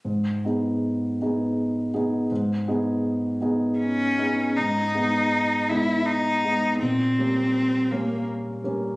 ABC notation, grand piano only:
X:1
M:3/4
L:1/8
Q:1/4=81
K:G#m
V:1 name="Grand piano"
G,, [B,DG]2 [B,DG]2 [B,DG] | G,, [B,DG]2 [B,DG]2 [B,DG] | G,, [G,B,D]2 [G,B,D]2 [G,B,D] | _B,, [=G,_B,_D]2 [G,B,D]2 [G,B,D] |]